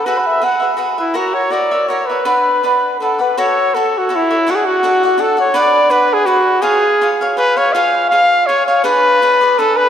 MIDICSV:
0, 0, Header, 1, 3, 480
1, 0, Start_track
1, 0, Key_signature, 2, "minor"
1, 0, Tempo, 366524
1, 63, Time_signature, 3, 2, 24, 8
1, 4387, Key_signature, 3, "minor"
1, 12953, End_track
2, 0, Start_track
2, 0, Title_t, "Cavaquinho"
2, 0, Program_c, 0, 24
2, 78, Note_on_c, 0, 71, 60
2, 79, Note_on_c, 0, 66, 56
2, 87, Note_on_c, 0, 68, 56
2, 103, Note_on_c, 0, 76, 70
2, 529, Note_off_c, 0, 68, 0
2, 538, Note_off_c, 0, 66, 0
2, 544, Note_on_c, 0, 66, 49
2, 545, Note_off_c, 0, 71, 0
2, 545, Note_off_c, 0, 76, 0
2, 545, Note_on_c, 0, 68, 49
2, 560, Note_on_c, 0, 71, 49
2, 561, Note_on_c, 0, 76, 51
2, 767, Note_off_c, 0, 76, 0
2, 782, Note_on_c, 0, 76, 39
2, 791, Note_off_c, 0, 71, 0
2, 797, Note_off_c, 0, 66, 0
2, 798, Note_off_c, 0, 68, 0
2, 807, Note_on_c, 0, 71, 38
2, 821, Note_on_c, 0, 68, 32
2, 1000, Note_off_c, 0, 68, 0
2, 1004, Note_on_c, 0, 66, 52
2, 1007, Note_off_c, 0, 76, 0
2, 1012, Note_off_c, 0, 71, 0
2, 1016, Note_on_c, 0, 68, 59
2, 1026, Note_on_c, 0, 76, 53
2, 1028, Note_on_c, 0, 71, 55
2, 1267, Note_off_c, 0, 66, 0
2, 1267, Note_off_c, 0, 76, 0
2, 1268, Note_off_c, 0, 71, 0
2, 1272, Note_off_c, 0, 68, 0
2, 1282, Note_on_c, 0, 76, 38
2, 1284, Note_on_c, 0, 71, 37
2, 1313, Note_on_c, 0, 68, 32
2, 1484, Note_off_c, 0, 76, 0
2, 1491, Note_on_c, 0, 66, 61
2, 1493, Note_off_c, 0, 68, 0
2, 1498, Note_off_c, 0, 71, 0
2, 1498, Note_on_c, 0, 70, 66
2, 1500, Note_on_c, 0, 76, 73
2, 1510, Note_on_c, 0, 73, 68
2, 1964, Note_off_c, 0, 66, 0
2, 1969, Note_on_c, 0, 66, 45
2, 1970, Note_off_c, 0, 70, 0
2, 1976, Note_off_c, 0, 76, 0
2, 1981, Note_off_c, 0, 73, 0
2, 1986, Note_on_c, 0, 70, 53
2, 2003, Note_on_c, 0, 73, 55
2, 2010, Note_on_c, 0, 76, 52
2, 2226, Note_off_c, 0, 76, 0
2, 2229, Note_off_c, 0, 66, 0
2, 2233, Note_off_c, 0, 73, 0
2, 2237, Note_off_c, 0, 70, 0
2, 2242, Note_on_c, 0, 76, 45
2, 2249, Note_on_c, 0, 73, 41
2, 2270, Note_on_c, 0, 70, 34
2, 2457, Note_off_c, 0, 76, 0
2, 2460, Note_off_c, 0, 73, 0
2, 2467, Note_on_c, 0, 66, 46
2, 2471, Note_off_c, 0, 70, 0
2, 2485, Note_on_c, 0, 70, 48
2, 2490, Note_on_c, 0, 73, 50
2, 2503, Note_on_c, 0, 76, 52
2, 2718, Note_off_c, 0, 66, 0
2, 2727, Note_off_c, 0, 70, 0
2, 2727, Note_off_c, 0, 76, 0
2, 2729, Note_off_c, 0, 73, 0
2, 2742, Note_on_c, 0, 76, 35
2, 2746, Note_on_c, 0, 73, 35
2, 2762, Note_on_c, 0, 70, 32
2, 2944, Note_off_c, 0, 70, 0
2, 2947, Note_off_c, 0, 73, 0
2, 2947, Note_off_c, 0, 76, 0
2, 2949, Note_on_c, 0, 62, 65
2, 2950, Note_on_c, 0, 71, 68
2, 2952, Note_on_c, 0, 78, 58
2, 2953, Note_on_c, 0, 74, 75
2, 3424, Note_off_c, 0, 62, 0
2, 3424, Note_off_c, 0, 71, 0
2, 3426, Note_off_c, 0, 74, 0
2, 3448, Note_on_c, 0, 62, 49
2, 3458, Note_on_c, 0, 74, 53
2, 3460, Note_off_c, 0, 78, 0
2, 3462, Note_on_c, 0, 71, 51
2, 3466, Note_on_c, 0, 78, 49
2, 3919, Note_off_c, 0, 62, 0
2, 3924, Note_off_c, 0, 74, 0
2, 3926, Note_off_c, 0, 71, 0
2, 3933, Note_on_c, 0, 62, 38
2, 3951, Note_on_c, 0, 71, 46
2, 3954, Note_off_c, 0, 78, 0
2, 3959, Note_on_c, 0, 78, 45
2, 3961, Note_on_c, 0, 74, 48
2, 4155, Note_off_c, 0, 74, 0
2, 4166, Note_off_c, 0, 78, 0
2, 4170, Note_on_c, 0, 74, 35
2, 4176, Note_off_c, 0, 71, 0
2, 4181, Note_off_c, 0, 62, 0
2, 4182, Note_on_c, 0, 78, 42
2, 4192, Note_on_c, 0, 71, 34
2, 4390, Note_off_c, 0, 74, 0
2, 4396, Note_off_c, 0, 78, 0
2, 4401, Note_off_c, 0, 71, 0
2, 4419, Note_on_c, 0, 69, 68
2, 4428, Note_on_c, 0, 66, 73
2, 4430, Note_on_c, 0, 76, 76
2, 4433, Note_on_c, 0, 73, 72
2, 4884, Note_off_c, 0, 69, 0
2, 4890, Note_off_c, 0, 76, 0
2, 4891, Note_off_c, 0, 73, 0
2, 4899, Note_off_c, 0, 66, 0
2, 4904, Note_on_c, 0, 66, 48
2, 4920, Note_on_c, 0, 69, 45
2, 4931, Note_on_c, 0, 73, 47
2, 4931, Note_on_c, 0, 76, 69
2, 5352, Note_off_c, 0, 66, 0
2, 5353, Note_off_c, 0, 69, 0
2, 5357, Note_on_c, 0, 66, 49
2, 5358, Note_off_c, 0, 73, 0
2, 5368, Note_off_c, 0, 76, 0
2, 5369, Note_on_c, 0, 69, 50
2, 5374, Note_on_c, 0, 73, 53
2, 5384, Note_on_c, 0, 76, 51
2, 5613, Note_off_c, 0, 66, 0
2, 5619, Note_off_c, 0, 69, 0
2, 5621, Note_off_c, 0, 73, 0
2, 5622, Note_off_c, 0, 76, 0
2, 5638, Note_on_c, 0, 76, 45
2, 5641, Note_on_c, 0, 73, 39
2, 5649, Note_on_c, 0, 69, 36
2, 5844, Note_off_c, 0, 76, 0
2, 5845, Note_off_c, 0, 73, 0
2, 5849, Note_off_c, 0, 69, 0
2, 5849, Note_on_c, 0, 62, 56
2, 5861, Note_on_c, 0, 74, 72
2, 5864, Note_on_c, 0, 69, 68
2, 5878, Note_on_c, 0, 78, 77
2, 6310, Note_off_c, 0, 62, 0
2, 6321, Note_off_c, 0, 74, 0
2, 6322, Note_off_c, 0, 69, 0
2, 6323, Note_off_c, 0, 78, 0
2, 6325, Note_on_c, 0, 62, 53
2, 6337, Note_on_c, 0, 69, 55
2, 6339, Note_on_c, 0, 78, 69
2, 6346, Note_on_c, 0, 74, 62
2, 6570, Note_off_c, 0, 62, 0
2, 6574, Note_off_c, 0, 78, 0
2, 6576, Note_off_c, 0, 69, 0
2, 6581, Note_off_c, 0, 74, 0
2, 6590, Note_on_c, 0, 78, 51
2, 6612, Note_on_c, 0, 74, 51
2, 6618, Note_on_c, 0, 69, 37
2, 6766, Note_off_c, 0, 69, 0
2, 6775, Note_off_c, 0, 74, 0
2, 6778, Note_on_c, 0, 62, 53
2, 6782, Note_on_c, 0, 69, 51
2, 6783, Note_off_c, 0, 78, 0
2, 6791, Note_on_c, 0, 74, 54
2, 6799, Note_on_c, 0, 78, 52
2, 7015, Note_off_c, 0, 78, 0
2, 7029, Note_off_c, 0, 74, 0
2, 7030, Note_off_c, 0, 69, 0
2, 7031, Note_on_c, 0, 78, 48
2, 7033, Note_off_c, 0, 62, 0
2, 7044, Note_on_c, 0, 74, 42
2, 7046, Note_on_c, 0, 69, 39
2, 7249, Note_off_c, 0, 78, 0
2, 7251, Note_off_c, 0, 69, 0
2, 7254, Note_on_c, 0, 62, 71
2, 7256, Note_off_c, 0, 74, 0
2, 7256, Note_on_c, 0, 71, 81
2, 7270, Note_on_c, 0, 74, 82
2, 7279, Note_on_c, 0, 78, 82
2, 7709, Note_off_c, 0, 62, 0
2, 7717, Note_off_c, 0, 71, 0
2, 7723, Note_off_c, 0, 74, 0
2, 7723, Note_off_c, 0, 78, 0
2, 7725, Note_on_c, 0, 62, 58
2, 7733, Note_on_c, 0, 71, 50
2, 7738, Note_on_c, 0, 74, 59
2, 7739, Note_on_c, 0, 78, 68
2, 8186, Note_off_c, 0, 62, 0
2, 8196, Note_off_c, 0, 71, 0
2, 8197, Note_off_c, 0, 74, 0
2, 8201, Note_on_c, 0, 62, 54
2, 8205, Note_off_c, 0, 78, 0
2, 8212, Note_on_c, 0, 71, 57
2, 8213, Note_on_c, 0, 74, 51
2, 8220, Note_on_c, 0, 78, 59
2, 8661, Note_off_c, 0, 62, 0
2, 8666, Note_on_c, 0, 65, 63
2, 8668, Note_off_c, 0, 71, 0
2, 8674, Note_on_c, 0, 68, 76
2, 8678, Note_off_c, 0, 74, 0
2, 8683, Note_off_c, 0, 78, 0
2, 8684, Note_on_c, 0, 73, 75
2, 8688, Note_on_c, 0, 77, 66
2, 9156, Note_off_c, 0, 65, 0
2, 9165, Note_off_c, 0, 73, 0
2, 9167, Note_off_c, 0, 77, 0
2, 9179, Note_off_c, 0, 68, 0
2, 9184, Note_on_c, 0, 68, 53
2, 9188, Note_on_c, 0, 65, 49
2, 9188, Note_on_c, 0, 73, 53
2, 9206, Note_on_c, 0, 77, 61
2, 9425, Note_off_c, 0, 77, 0
2, 9438, Note_off_c, 0, 68, 0
2, 9439, Note_off_c, 0, 65, 0
2, 9439, Note_off_c, 0, 73, 0
2, 9441, Note_on_c, 0, 77, 50
2, 9454, Note_on_c, 0, 68, 43
2, 9458, Note_on_c, 0, 73, 55
2, 9648, Note_off_c, 0, 68, 0
2, 9650, Note_off_c, 0, 77, 0
2, 9651, Note_on_c, 0, 65, 52
2, 9652, Note_off_c, 0, 73, 0
2, 9664, Note_on_c, 0, 68, 55
2, 9666, Note_on_c, 0, 77, 49
2, 9668, Note_on_c, 0, 73, 49
2, 9892, Note_off_c, 0, 77, 0
2, 9902, Note_off_c, 0, 73, 0
2, 9908, Note_on_c, 0, 77, 44
2, 9909, Note_off_c, 0, 68, 0
2, 9918, Note_off_c, 0, 65, 0
2, 9918, Note_on_c, 0, 73, 43
2, 9925, Note_on_c, 0, 68, 42
2, 10139, Note_off_c, 0, 77, 0
2, 10141, Note_off_c, 0, 73, 0
2, 10142, Note_off_c, 0, 68, 0
2, 10144, Note_on_c, 0, 65, 64
2, 10156, Note_on_c, 0, 73, 76
2, 10158, Note_on_c, 0, 68, 67
2, 10159, Note_on_c, 0, 77, 77
2, 10617, Note_off_c, 0, 65, 0
2, 10625, Note_off_c, 0, 73, 0
2, 10633, Note_on_c, 0, 65, 51
2, 10634, Note_off_c, 0, 68, 0
2, 10637, Note_off_c, 0, 77, 0
2, 10639, Note_on_c, 0, 68, 46
2, 10641, Note_on_c, 0, 73, 49
2, 10651, Note_on_c, 0, 77, 64
2, 11098, Note_off_c, 0, 65, 0
2, 11106, Note_off_c, 0, 73, 0
2, 11111, Note_off_c, 0, 77, 0
2, 11112, Note_off_c, 0, 68, 0
2, 11114, Note_on_c, 0, 65, 46
2, 11117, Note_on_c, 0, 68, 55
2, 11122, Note_on_c, 0, 73, 53
2, 11127, Note_on_c, 0, 77, 54
2, 11349, Note_off_c, 0, 77, 0
2, 11364, Note_off_c, 0, 73, 0
2, 11365, Note_on_c, 0, 77, 51
2, 11371, Note_off_c, 0, 65, 0
2, 11373, Note_off_c, 0, 68, 0
2, 11380, Note_on_c, 0, 73, 41
2, 11388, Note_on_c, 0, 68, 40
2, 11561, Note_off_c, 0, 68, 0
2, 11573, Note_on_c, 0, 62, 74
2, 11577, Note_on_c, 0, 68, 77
2, 11581, Note_off_c, 0, 73, 0
2, 11585, Note_off_c, 0, 77, 0
2, 11586, Note_on_c, 0, 71, 77
2, 11590, Note_on_c, 0, 74, 74
2, 12060, Note_off_c, 0, 62, 0
2, 12061, Note_off_c, 0, 68, 0
2, 12066, Note_off_c, 0, 71, 0
2, 12068, Note_off_c, 0, 74, 0
2, 12074, Note_on_c, 0, 62, 52
2, 12081, Note_on_c, 0, 68, 60
2, 12082, Note_on_c, 0, 71, 56
2, 12088, Note_on_c, 0, 74, 65
2, 12307, Note_off_c, 0, 74, 0
2, 12314, Note_off_c, 0, 71, 0
2, 12322, Note_on_c, 0, 74, 57
2, 12328, Note_off_c, 0, 62, 0
2, 12330, Note_on_c, 0, 71, 49
2, 12332, Note_off_c, 0, 68, 0
2, 12347, Note_on_c, 0, 68, 51
2, 12542, Note_off_c, 0, 74, 0
2, 12546, Note_off_c, 0, 71, 0
2, 12547, Note_off_c, 0, 68, 0
2, 12555, Note_on_c, 0, 62, 55
2, 12562, Note_on_c, 0, 68, 62
2, 12575, Note_on_c, 0, 74, 55
2, 12576, Note_on_c, 0, 71, 53
2, 12953, Note_off_c, 0, 62, 0
2, 12953, Note_off_c, 0, 68, 0
2, 12953, Note_off_c, 0, 71, 0
2, 12953, Note_off_c, 0, 74, 0
2, 12953, End_track
3, 0, Start_track
3, 0, Title_t, "Trumpet"
3, 0, Program_c, 1, 56
3, 69, Note_on_c, 1, 71, 73
3, 247, Note_on_c, 1, 78, 55
3, 267, Note_off_c, 1, 71, 0
3, 349, Note_on_c, 1, 76, 78
3, 368, Note_off_c, 1, 78, 0
3, 574, Note_on_c, 1, 78, 78
3, 594, Note_off_c, 1, 76, 0
3, 922, Note_off_c, 1, 78, 0
3, 1311, Note_on_c, 1, 64, 65
3, 1526, Note_on_c, 1, 66, 74
3, 1545, Note_off_c, 1, 64, 0
3, 1754, Note_on_c, 1, 73, 75
3, 1774, Note_off_c, 1, 66, 0
3, 1989, Note_on_c, 1, 74, 76
3, 2008, Note_off_c, 1, 73, 0
3, 2464, Note_on_c, 1, 73, 70
3, 2484, Note_off_c, 1, 74, 0
3, 2705, Note_on_c, 1, 71, 71
3, 2724, Note_off_c, 1, 73, 0
3, 3900, Note_off_c, 1, 71, 0
3, 3934, Note_on_c, 1, 69, 63
3, 4207, Note_on_c, 1, 71, 63
3, 4227, Note_off_c, 1, 69, 0
3, 4430, Note_on_c, 1, 73, 80
3, 4449, Note_off_c, 1, 71, 0
3, 4910, Note_on_c, 1, 69, 75
3, 4929, Note_off_c, 1, 73, 0
3, 5210, Note_on_c, 1, 66, 74
3, 5230, Note_off_c, 1, 69, 0
3, 5445, Note_on_c, 1, 64, 76
3, 5465, Note_off_c, 1, 66, 0
3, 5903, Note_on_c, 1, 66, 88
3, 5923, Note_off_c, 1, 64, 0
3, 5964, Note_on_c, 1, 68, 65
3, 5983, Note_off_c, 1, 66, 0
3, 6094, Note_on_c, 1, 66, 81
3, 6113, Note_off_c, 1, 68, 0
3, 6814, Note_on_c, 1, 69, 78
3, 6834, Note_off_c, 1, 66, 0
3, 7051, Note_off_c, 1, 69, 0
3, 7071, Note_on_c, 1, 73, 80
3, 7291, Note_on_c, 1, 74, 97
3, 7310, Note_off_c, 1, 73, 0
3, 7733, Note_on_c, 1, 71, 80
3, 7753, Note_off_c, 1, 74, 0
3, 8033, Note_on_c, 1, 68, 86
3, 8053, Note_off_c, 1, 71, 0
3, 8198, Note_on_c, 1, 66, 83
3, 8218, Note_off_c, 1, 68, 0
3, 8666, Note_on_c, 1, 68, 98
3, 8686, Note_off_c, 1, 66, 0
3, 9300, Note_off_c, 1, 68, 0
3, 9658, Note_on_c, 1, 71, 90
3, 9922, Note_on_c, 1, 73, 79
3, 9942, Note_off_c, 1, 71, 0
3, 10125, Note_on_c, 1, 77, 86
3, 10144, Note_off_c, 1, 73, 0
3, 10594, Note_off_c, 1, 77, 0
3, 10602, Note_on_c, 1, 77, 91
3, 11086, Note_on_c, 1, 73, 85
3, 11106, Note_off_c, 1, 77, 0
3, 11338, Note_off_c, 1, 73, 0
3, 11346, Note_on_c, 1, 73, 71
3, 11562, Note_off_c, 1, 73, 0
3, 11577, Note_on_c, 1, 71, 96
3, 12557, Note_on_c, 1, 69, 85
3, 12576, Note_off_c, 1, 71, 0
3, 12794, Note_on_c, 1, 71, 91
3, 12813, Note_off_c, 1, 69, 0
3, 12953, Note_off_c, 1, 71, 0
3, 12953, End_track
0, 0, End_of_file